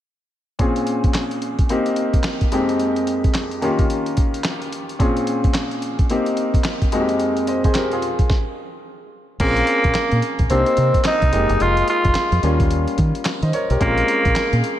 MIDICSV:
0, 0, Header, 1, 6, 480
1, 0, Start_track
1, 0, Tempo, 550459
1, 518, Time_signature, 4, 2, 24, 8
1, 12900, End_track
2, 0, Start_track
2, 0, Title_t, "Grand piano"
2, 0, Program_c, 0, 0
2, 513, Note_on_c, 0, 46, 70
2, 517, Note_on_c, 0, 60, 67
2, 520, Note_on_c, 0, 61, 60
2, 526, Note_on_c, 0, 65, 61
2, 532, Note_on_c, 0, 68, 72
2, 682, Control_c, 0, 64, 127
2, 1456, Note_off_c, 0, 46, 0
2, 1458, Note_off_c, 0, 60, 0
2, 1460, Note_off_c, 0, 61, 0
2, 1463, Note_off_c, 0, 65, 0
2, 1466, Note_off_c, 0, 68, 0
2, 1480, Note_on_c, 0, 58, 75
2, 1484, Note_on_c, 0, 60, 68
2, 1490, Note_on_c, 0, 63, 67
2, 1491, Control_c, 0, 64, 0
2, 1492, Note_on_c, 0, 67, 79
2, 1641, Control_c, 0, 64, 127
2, 2191, Note_off_c, 0, 58, 0
2, 2194, Note_off_c, 0, 60, 0
2, 2194, Note_on_c, 0, 41, 68
2, 2196, Note_off_c, 0, 63, 0
2, 2198, Note_on_c, 0, 56, 62
2, 2201, Note_off_c, 0, 67, 0
2, 2205, Note_on_c, 0, 58, 59
2, 2207, Note_on_c, 0, 60, 61
2, 2209, Control_c, 0, 64, 0
2, 2209, Note_on_c, 0, 63, 64
2, 2214, Note_on_c, 0, 67, 77
2, 2372, Control_c, 0, 64, 127
2, 3137, Note_off_c, 0, 41, 0
2, 3139, Note_off_c, 0, 56, 0
2, 3142, Note_off_c, 0, 58, 0
2, 3143, Note_off_c, 0, 60, 0
2, 3145, Note_off_c, 0, 63, 0
2, 3147, Note_off_c, 0, 67, 0
2, 3152, Note_on_c, 0, 51, 72
2, 3158, Note_on_c, 0, 58, 67
2, 3162, Note_on_c, 0, 61, 62
2, 3169, Note_on_c, 0, 65, 67
2, 3171, Control_c, 0, 64, 0
2, 3173, Note_on_c, 0, 67, 81
2, 3330, Control_c, 0, 64, 127
2, 4331, Note_off_c, 0, 51, 0
2, 4334, Note_off_c, 0, 58, 0
2, 4336, Note_off_c, 0, 61, 0
2, 4340, Note_off_c, 0, 65, 0
2, 4342, Note_off_c, 0, 67, 0
2, 4351, Note_on_c, 0, 46, 68
2, 4355, Note_on_c, 0, 60, 66
2, 4361, Note_on_c, 0, 61, 66
2, 4368, Control_c, 0, 64, 0
2, 4368, Note_on_c, 0, 65, 67
2, 4373, Note_on_c, 0, 68, 73
2, 4532, Control_c, 0, 64, 127
2, 5295, Note_off_c, 0, 46, 0
2, 5297, Note_off_c, 0, 60, 0
2, 5301, Note_off_c, 0, 61, 0
2, 5304, Note_off_c, 0, 65, 0
2, 5306, Note_off_c, 0, 68, 0
2, 5320, Note_on_c, 0, 58, 73
2, 5325, Note_on_c, 0, 60, 70
2, 5327, Note_on_c, 0, 63, 66
2, 5329, Control_c, 0, 64, 0
2, 5331, Note_on_c, 0, 67, 75
2, 5503, Control_c, 0, 64, 127
2, 6028, Note_off_c, 0, 58, 0
2, 6032, Note_off_c, 0, 60, 0
2, 6033, Note_on_c, 0, 41, 64
2, 6036, Note_off_c, 0, 63, 0
2, 6038, Note_on_c, 0, 56, 67
2, 6041, Note_on_c, 0, 58, 63
2, 6045, Note_off_c, 0, 67, 0
2, 6045, Note_on_c, 0, 60, 61
2, 6049, Note_on_c, 0, 63, 67
2, 6050, Control_c, 0, 64, 0
2, 6053, Note_on_c, 0, 66, 60
2, 6112, Note_on_c, 0, 67, 75
2, 6115, Note_off_c, 0, 66, 0
2, 6228, Control_c, 0, 64, 127
2, 6311, Note_off_c, 0, 67, 0
2, 6520, Note_on_c, 0, 75, 60
2, 6527, Note_on_c, 0, 72, 52
2, 6655, Note_off_c, 0, 72, 0
2, 6658, Note_off_c, 0, 75, 0
2, 6668, Note_on_c, 0, 72, 72
2, 6673, Note_on_c, 0, 68, 63
2, 6755, Note_off_c, 0, 72, 0
2, 6758, Note_off_c, 0, 68, 0
2, 6759, Note_on_c, 0, 70, 66
2, 6763, Note_on_c, 0, 67, 59
2, 6897, Note_off_c, 0, 70, 0
2, 6900, Note_off_c, 0, 67, 0
2, 6912, Note_on_c, 0, 68, 69
2, 6919, Note_on_c, 0, 65, 58
2, 6976, Note_off_c, 0, 41, 0
2, 6979, Note_off_c, 0, 56, 0
2, 6980, Note_off_c, 0, 58, 0
2, 6982, Note_off_c, 0, 60, 0
2, 6984, Note_off_c, 0, 63, 0
2, 7008, Control_c, 0, 64, 0
2, 7104, Control_c, 0, 64, 127
2, 7137, Note_off_c, 0, 68, 0
2, 7140, Note_off_c, 0, 65, 0
2, 7249, Control_c, 0, 64, 0
2, 8195, Note_on_c, 0, 60, 65
2, 8202, Note_on_c, 0, 61, 58
2, 8209, Note_on_c, 0, 65, 55
2, 8216, Note_on_c, 0, 68, 73
2, 8374, Control_c, 0, 64, 127
2, 9137, Note_off_c, 0, 60, 0
2, 9141, Note_off_c, 0, 61, 0
2, 9144, Note_off_c, 0, 65, 0
2, 9148, Note_off_c, 0, 68, 0
2, 9158, Note_on_c, 0, 58, 68
2, 9162, Note_on_c, 0, 60, 59
2, 9164, Note_on_c, 0, 62, 52
2, 9168, Note_on_c, 0, 67, 71
2, 9171, Control_c, 0, 64, 0
2, 9222, Note_on_c, 0, 63, 57
2, 9230, Note_off_c, 0, 62, 0
2, 9345, Control_c, 0, 64, 127
2, 9870, Note_off_c, 0, 58, 0
2, 9876, Note_on_c, 0, 56, 59
2, 9878, Note_off_c, 0, 63, 0
2, 9880, Note_off_c, 0, 60, 0
2, 9883, Note_off_c, 0, 67, 0
2, 9883, Note_on_c, 0, 58, 52
2, 9889, Control_c, 0, 64, 0
2, 9891, Note_on_c, 0, 63, 56
2, 9896, Note_on_c, 0, 67, 65
2, 10050, Control_c, 0, 64, 127
2, 10818, Note_off_c, 0, 56, 0
2, 10822, Note_off_c, 0, 58, 0
2, 10826, Note_off_c, 0, 63, 0
2, 10828, Note_off_c, 0, 67, 0
2, 10838, Note_on_c, 0, 55, 60
2, 10843, Note_on_c, 0, 58, 60
2, 10848, Control_c, 0, 64, 0
2, 10850, Note_on_c, 0, 61, 62
2, 10858, Note_on_c, 0, 65, 71
2, 11021, Control_c, 0, 64, 127
2, 11709, Note_on_c, 0, 75, 59
2, 11715, Note_on_c, 0, 72, 53
2, 11796, Note_off_c, 0, 75, 0
2, 11799, Note_off_c, 0, 72, 0
2, 11805, Note_on_c, 0, 73, 64
2, 11812, Note_on_c, 0, 70, 54
2, 11939, Note_off_c, 0, 70, 0
2, 11941, Note_off_c, 0, 73, 0
2, 11952, Note_on_c, 0, 70, 68
2, 11957, Note_on_c, 0, 67, 54
2, 12014, Note_off_c, 0, 55, 0
2, 12017, Note_off_c, 0, 58, 0
2, 12020, Note_off_c, 0, 61, 0
2, 12024, Note_off_c, 0, 65, 0
2, 12034, Note_on_c, 0, 56, 65
2, 12038, Note_on_c, 0, 60, 57
2, 12046, Note_on_c, 0, 61, 56
2, 12051, Control_c, 0, 64, 0
2, 12053, Note_on_c, 0, 65, 74
2, 12177, Note_off_c, 0, 70, 0
2, 12179, Note_off_c, 0, 67, 0
2, 12181, Control_c, 0, 64, 127
2, 12900, Note_off_c, 0, 56, 0
2, 12900, Note_off_c, 0, 60, 0
2, 12900, Note_off_c, 0, 61, 0
2, 12900, Note_off_c, 0, 65, 0
2, 12900, End_track
3, 0, Start_track
3, 0, Title_t, "Tenor saxophone"
3, 0, Program_c, 1, 66
3, 8202, Note_on_c, 1, 58, 114
3, 8885, Note_off_c, 1, 58, 0
3, 9157, Note_on_c, 1, 60, 89
3, 9604, Note_off_c, 1, 60, 0
3, 9652, Note_on_c, 1, 63, 99
3, 10130, Note_on_c, 1, 65, 112
3, 10143, Note_off_c, 1, 63, 0
3, 10364, Note_off_c, 1, 65, 0
3, 10371, Note_on_c, 1, 65, 97
3, 10811, Note_off_c, 1, 65, 0
3, 12042, Note_on_c, 1, 58, 110
3, 12725, Note_off_c, 1, 58, 0
3, 12900, End_track
4, 0, Start_track
4, 0, Title_t, "Fingered electric bass"
4, 0, Program_c, 2, 33
4, 8197, Note_on_c, 2, 34, 105
4, 8380, Note_off_c, 2, 34, 0
4, 8586, Note_on_c, 2, 34, 90
4, 8657, Note_off_c, 2, 34, 0
4, 8825, Note_on_c, 2, 46, 89
4, 8896, Note_off_c, 2, 46, 0
4, 9063, Note_on_c, 2, 34, 76
4, 9135, Note_off_c, 2, 34, 0
4, 9158, Note_on_c, 2, 36, 103
4, 9269, Note_off_c, 2, 36, 0
4, 9398, Note_on_c, 2, 48, 89
4, 9509, Note_off_c, 2, 48, 0
4, 9786, Note_on_c, 2, 36, 87
4, 9857, Note_off_c, 2, 36, 0
4, 9877, Note_on_c, 2, 29, 103
4, 9989, Note_off_c, 2, 29, 0
4, 10025, Note_on_c, 2, 30, 90
4, 10096, Note_off_c, 2, 30, 0
4, 10119, Note_on_c, 2, 29, 115
4, 10302, Note_off_c, 2, 29, 0
4, 10507, Note_on_c, 2, 29, 90
4, 10578, Note_off_c, 2, 29, 0
4, 10743, Note_on_c, 2, 41, 91
4, 10815, Note_off_c, 2, 41, 0
4, 10839, Note_on_c, 2, 39, 98
4, 11205, Note_off_c, 2, 39, 0
4, 11323, Note_on_c, 2, 51, 95
4, 11433, Note_off_c, 2, 51, 0
4, 11707, Note_on_c, 2, 51, 89
4, 11777, Note_off_c, 2, 51, 0
4, 11947, Note_on_c, 2, 35, 75
4, 12018, Note_off_c, 2, 35, 0
4, 12040, Note_on_c, 2, 34, 103
4, 12222, Note_off_c, 2, 34, 0
4, 12429, Note_on_c, 2, 34, 89
4, 12499, Note_off_c, 2, 34, 0
4, 12667, Note_on_c, 2, 46, 91
4, 12738, Note_off_c, 2, 46, 0
4, 12900, End_track
5, 0, Start_track
5, 0, Title_t, "Muted fingered electric bass strokes"
5, 8678, Note_on_c, 9, 29, 48
5, 8765, Note_off_c, 9, 29, 0
5, 10599, Note_on_c, 9, 29, 47
5, 10686, Note_off_c, 9, 29, 0
5, 12520, Note_on_c, 9, 29, 44
5, 12607, Note_off_c, 9, 29, 0
5, 12900, End_track
6, 0, Start_track
6, 0, Title_t, "Drums"
6, 516, Note_on_c, 9, 42, 62
6, 517, Note_on_c, 9, 36, 99
6, 603, Note_off_c, 9, 42, 0
6, 604, Note_off_c, 9, 36, 0
6, 663, Note_on_c, 9, 42, 53
6, 750, Note_off_c, 9, 42, 0
6, 756, Note_on_c, 9, 42, 72
6, 843, Note_off_c, 9, 42, 0
6, 905, Note_on_c, 9, 42, 43
6, 907, Note_on_c, 9, 36, 83
6, 993, Note_off_c, 9, 42, 0
6, 994, Note_off_c, 9, 36, 0
6, 994, Note_on_c, 9, 39, 78
6, 1000, Note_on_c, 9, 38, 100
6, 1001, Note_on_c, 9, 42, 72
6, 1081, Note_off_c, 9, 39, 0
6, 1087, Note_off_c, 9, 38, 0
6, 1088, Note_off_c, 9, 42, 0
6, 1144, Note_on_c, 9, 42, 46
6, 1231, Note_off_c, 9, 42, 0
6, 1237, Note_on_c, 9, 42, 65
6, 1324, Note_off_c, 9, 42, 0
6, 1383, Note_on_c, 9, 42, 45
6, 1384, Note_on_c, 9, 36, 77
6, 1470, Note_off_c, 9, 42, 0
6, 1471, Note_off_c, 9, 36, 0
6, 1477, Note_on_c, 9, 42, 71
6, 1564, Note_off_c, 9, 42, 0
6, 1621, Note_on_c, 9, 42, 50
6, 1708, Note_off_c, 9, 42, 0
6, 1712, Note_on_c, 9, 42, 68
6, 1799, Note_off_c, 9, 42, 0
6, 1862, Note_on_c, 9, 36, 77
6, 1863, Note_on_c, 9, 42, 51
6, 1948, Note_on_c, 9, 39, 81
6, 1949, Note_off_c, 9, 36, 0
6, 1950, Note_off_c, 9, 42, 0
6, 1954, Note_on_c, 9, 38, 109
6, 1955, Note_on_c, 9, 42, 78
6, 2035, Note_off_c, 9, 39, 0
6, 2041, Note_off_c, 9, 38, 0
6, 2042, Note_off_c, 9, 42, 0
6, 2101, Note_on_c, 9, 42, 47
6, 2104, Note_on_c, 9, 36, 81
6, 2188, Note_off_c, 9, 42, 0
6, 2191, Note_off_c, 9, 36, 0
6, 2196, Note_on_c, 9, 42, 82
6, 2283, Note_off_c, 9, 42, 0
6, 2345, Note_on_c, 9, 42, 50
6, 2432, Note_off_c, 9, 42, 0
6, 2437, Note_on_c, 9, 42, 65
6, 2525, Note_off_c, 9, 42, 0
6, 2584, Note_on_c, 9, 42, 51
6, 2671, Note_off_c, 9, 42, 0
6, 2678, Note_on_c, 9, 42, 74
6, 2765, Note_off_c, 9, 42, 0
6, 2827, Note_on_c, 9, 36, 82
6, 2827, Note_on_c, 9, 42, 43
6, 2914, Note_off_c, 9, 36, 0
6, 2914, Note_off_c, 9, 42, 0
6, 2914, Note_on_c, 9, 39, 77
6, 2920, Note_on_c, 9, 38, 97
6, 2921, Note_on_c, 9, 42, 80
6, 3001, Note_off_c, 9, 39, 0
6, 3007, Note_off_c, 9, 38, 0
6, 3008, Note_off_c, 9, 42, 0
6, 3065, Note_on_c, 9, 42, 46
6, 3152, Note_off_c, 9, 42, 0
6, 3159, Note_on_c, 9, 42, 63
6, 3246, Note_off_c, 9, 42, 0
6, 3303, Note_on_c, 9, 42, 44
6, 3304, Note_on_c, 9, 36, 79
6, 3390, Note_off_c, 9, 42, 0
6, 3392, Note_off_c, 9, 36, 0
6, 3400, Note_on_c, 9, 42, 70
6, 3487, Note_off_c, 9, 42, 0
6, 3543, Note_on_c, 9, 42, 49
6, 3630, Note_off_c, 9, 42, 0
6, 3635, Note_on_c, 9, 42, 76
6, 3640, Note_on_c, 9, 36, 86
6, 3722, Note_off_c, 9, 42, 0
6, 3727, Note_off_c, 9, 36, 0
6, 3786, Note_on_c, 9, 42, 54
6, 3871, Note_on_c, 9, 39, 94
6, 3873, Note_off_c, 9, 42, 0
6, 3877, Note_on_c, 9, 38, 112
6, 3878, Note_on_c, 9, 42, 74
6, 3958, Note_off_c, 9, 39, 0
6, 3964, Note_off_c, 9, 38, 0
6, 3965, Note_off_c, 9, 42, 0
6, 4026, Note_on_c, 9, 42, 51
6, 4113, Note_off_c, 9, 42, 0
6, 4120, Note_on_c, 9, 42, 80
6, 4207, Note_off_c, 9, 42, 0
6, 4267, Note_on_c, 9, 42, 53
6, 4354, Note_off_c, 9, 42, 0
6, 4358, Note_on_c, 9, 36, 95
6, 4359, Note_on_c, 9, 42, 63
6, 4445, Note_off_c, 9, 36, 0
6, 4446, Note_off_c, 9, 42, 0
6, 4505, Note_on_c, 9, 42, 52
6, 4592, Note_off_c, 9, 42, 0
6, 4596, Note_on_c, 9, 42, 76
6, 4683, Note_off_c, 9, 42, 0
6, 4744, Note_on_c, 9, 42, 42
6, 4745, Note_on_c, 9, 36, 83
6, 4831, Note_off_c, 9, 42, 0
6, 4831, Note_on_c, 9, 39, 81
6, 4833, Note_off_c, 9, 36, 0
6, 4837, Note_on_c, 9, 38, 103
6, 4838, Note_on_c, 9, 42, 80
6, 4918, Note_off_c, 9, 39, 0
6, 4924, Note_off_c, 9, 38, 0
6, 4925, Note_off_c, 9, 42, 0
6, 4982, Note_on_c, 9, 42, 41
6, 5069, Note_off_c, 9, 42, 0
6, 5076, Note_on_c, 9, 42, 70
6, 5163, Note_off_c, 9, 42, 0
6, 5222, Note_on_c, 9, 42, 44
6, 5223, Note_on_c, 9, 36, 81
6, 5309, Note_off_c, 9, 42, 0
6, 5310, Note_off_c, 9, 36, 0
6, 5315, Note_on_c, 9, 42, 66
6, 5403, Note_off_c, 9, 42, 0
6, 5461, Note_on_c, 9, 42, 50
6, 5548, Note_off_c, 9, 42, 0
6, 5554, Note_on_c, 9, 42, 66
6, 5641, Note_off_c, 9, 42, 0
6, 5702, Note_on_c, 9, 36, 80
6, 5707, Note_on_c, 9, 42, 51
6, 5789, Note_off_c, 9, 36, 0
6, 5790, Note_on_c, 9, 39, 88
6, 5794, Note_off_c, 9, 42, 0
6, 5796, Note_on_c, 9, 38, 106
6, 5797, Note_on_c, 9, 42, 72
6, 5877, Note_off_c, 9, 39, 0
6, 5883, Note_off_c, 9, 38, 0
6, 5884, Note_off_c, 9, 42, 0
6, 5944, Note_on_c, 9, 36, 80
6, 5945, Note_on_c, 9, 42, 49
6, 6031, Note_off_c, 9, 36, 0
6, 6032, Note_off_c, 9, 42, 0
6, 6035, Note_on_c, 9, 42, 83
6, 6123, Note_off_c, 9, 42, 0
6, 6181, Note_on_c, 9, 42, 51
6, 6268, Note_off_c, 9, 42, 0
6, 6274, Note_on_c, 9, 42, 65
6, 6361, Note_off_c, 9, 42, 0
6, 6423, Note_on_c, 9, 42, 55
6, 6511, Note_off_c, 9, 42, 0
6, 6516, Note_on_c, 9, 42, 79
6, 6604, Note_off_c, 9, 42, 0
6, 6664, Note_on_c, 9, 42, 47
6, 6665, Note_on_c, 9, 36, 81
6, 6751, Note_off_c, 9, 42, 0
6, 6752, Note_off_c, 9, 36, 0
6, 6753, Note_on_c, 9, 39, 78
6, 6759, Note_on_c, 9, 38, 102
6, 6760, Note_on_c, 9, 42, 74
6, 6840, Note_off_c, 9, 39, 0
6, 6846, Note_off_c, 9, 38, 0
6, 6847, Note_off_c, 9, 42, 0
6, 6902, Note_on_c, 9, 42, 46
6, 6989, Note_off_c, 9, 42, 0
6, 6996, Note_on_c, 9, 42, 66
6, 7084, Note_off_c, 9, 42, 0
6, 7141, Note_on_c, 9, 42, 46
6, 7142, Note_on_c, 9, 36, 84
6, 7228, Note_off_c, 9, 42, 0
6, 7229, Note_off_c, 9, 36, 0
6, 7234, Note_on_c, 9, 38, 80
6, 7235, Note_on_c, 9, 36, 95
6, 7321, Note_off_c, 9, 38, 0
6, 7322, Note_off_c, 9, 36, 0
6, 8195, Note_on_c, 9, 42, 65
6, 8195, Note_on_c, 9, 49, 76
6, 8196, Note_on_c, 9, 36, 100
6, 8282, Note_off_c, 9, 42, 0
6, 8282, Note_off_c, 9, 49, 0
6, 8283, Note_off_c, 9, 36, 0
6, 8341, Note_on_c, 9, 42, 54
6, 8428, Note_off_c, 9, 42, 0
6, 8432, Note_on_c, 9, 42, 77
6, 8519, Note_off_c, 9, 42, 0
6, 8581, Note_on_c, 9, 42, 43
6, 8584, Note_on_c, 9, 36, 83
6, 8668, Note_off_c, 9, 42, 0
6, 8670, Note_on_c, 9, 39, 81
6, 8672, Note_off_c, 9, 36, 0
6, 8676, Note_on_c, 9, 38, 106
6, 8676, Note_on_c, 9, 42, 81
6, 8757, Note_off_c, 9, 39, 0
6, 8763, Note_off_c, 9, 38, 0
6, 8764, Note_off_c, 9, 42, 0
6, 8820, Note_on_c, 9, 42, 45
6, 8907, Note_off_c, 9, 42, 0
6, 8915, Note_on_c, 9, 42, 70
6, 9002, Note_off_c, 9, 42, 0
6, 9058, Note_on_c, 9, 42, 45
6, 9062, Note_on_c, 9, 36, 76
6, 9146, Note_off_c, 9, 42, 0
6, 9149, Note_off_c, 9, 36, 0
6, 9153, Note_on_c, 9, 42, 76
6, 9241, Note_off_c, 9, 42, 0
6, 9298, Note_on_c, 9, 42, 53
6, 9386, Note_off_c, 9, 42, 0
6, 9390, Note_on_c, 9, 42, 75
6, 9477, Note_off_c, 9, 42, 0
6, 9542, Note_on_c, 9, 36, 79
6, 9543, Note_on_c, 9, 42, 51
6, 9629, Note_off_c, 9, 36, 0
6, 9629, Note_on_c, 9, 39, 91
6, 9630, Note_off_c, 9, 42, 0
6, 9635, Note_on_c, 9, 38, 111
6, 9636, Note_on_c, 9, 42, 72
6, 9716, Note_off_c, 9, 39, 0
6, 9722, Note_off_c, 9, 38, 0
6, 9723, Note_off_c, 9, 42, 0
6, 9783, Note_on_c, 9, 42, 51
6, 9784, Note_on_c, 9, 36, 82
6, 9870, Note_off_c, 9, 42, 0
6, 9872, Note_off_c, 9, 36, 0
6, 9877, Note_on_c, 9, 42, 80
6, 9964, Note_off_c, 9, 42, 0
6, 10023, Note_on_c, 9, 42, 53
6, 10110, Note_off_c, 9, 42, 0
6, 10116, Note_on_c, 9, 42, 66
6, 10203, Note_off_c, 9, 42, 0
6, 10263, Note_on_c, 9, 42, 53
6, 10351, Note_off_c, 9, 42, 0
6, 10356, Note_on_c, 9, 42, 75
6, 10443, Note_off_c, 9, 42, 0
6, 10503, Note_on_c, 9, 42, 47
6, 10506, Note_on_c, 9, 36, 83
6, 10590, Note_off_c, 9, 42, 0
6, 10590, Note_on_c, 9, 39, 77
6, 10593, Note_off_c, 9, 36, 0
6, 10596, Note_on_c, 9, 38, 97
6, 10597, Note_on_c, 9, 42, 78
6, 10677, Note_off_c, 9, 39, 0
6, 10683, Note_off_c, 9, 38, 0
6, 10684, Note_off_c, 9, 42, 0
6, 10743, Note_on_c, 9, 42, 44
6, 10831, Note_off_c, 9, 42, 0
6, 10839, Note_on_c, 9, 42, 69
6, 10926, Note_off_c, 9, 42, 0
6, 10986, Note_on_c, 9, 36, 86
6, 10986, Note_on_c, 9, 42, 47
6, 11073, Note_off_c, 9, 36, 0
6, 11073, Note_off_c, 9, 42, 0
6, 11079, Note_on_c, 9, 42, 69
6, 11166, Note_off_c, 9, 42, 0
6, 11227, Note_on_c, 9, 42, 49
6, 11314, Note_off_c, 9, 42, 0
6, 11317, Note_on_c, 9, 42, 73
6, 11321, Note_on_c, 9, 36, 82
6, 11404, Note_off_c, 9, 42, 0
6, 11408, Note_off_c, 9, 36, 0
6, 11467, Note_on_c, 9, 42, 51
6, 11553, Note_on_c, 9, 39, 91
6, 11554, Note_off_c, 9, 42, 0
6, 11559, Note_on_c, 9, 38, 118
6, 11559, Note_on_c, 9, 42, 77
6, 11640, Note_off_c, 9, 39, 0
6, 11646, Note_off_c, 9, 38, 0
6, 11647, Note_off_c, 9, 42, 0
6, 11706, Note_on_c, 9, 42, 53
6, 11794, Note_off_c, 9, 42, 0
6, 11801, Note_on_c, 9, 42, 83
6, 11888, Note_off_c, 9, 42, 0
6, 11947, Note_on_c, 9, 42, 57
6, 12034, Note_off_c, 9, 42, 0
6, 12039, Note_on_c, 9, 42, 68
6, 12040, Note_on_c, 9, 36, 106
6, 12126, Note_off_c, 9, 42, 0
6, 12127, Note_off_c, 9, 36, 0
6, 12186, Note_on_c, 9, 42, 55
6, 12273, Note_off_c, 9, 42, 0
6, 12280, Note_on_c, 9, 42, 79
6, 12368, Note_off_c, 9, 42, 0
6, 12427, Note_on_c, 9, 42, 47
6, 12429, Note_on_c, 9, 36, 85
6, 12515, Note_off_c, 9, 42, 0
6, 12516, Note_off_c, 9, 36, 0
6, 12517, Note_on_c, 9, 39, 82
6, 12523, Note_on_c, 9, 38, 95
6, 12524, Note_on_c, 9, 42, 80
6, 12604, Note_off_c, 9, 39, 0
6, 12610, Note_off_c, 9, 38, 0
6, 12611, Note_off_c, 9, 42, 0
6, 12668, Note_on_c, 9, 42, 45
6, 12756, Note_off_c, 9, 42, 0
6, 12764, Note_on_c, 9, 42, 73
6, 12851, Note_off_c, 9, 42, 0
6, 12900, End_track
0, 0, End_of_file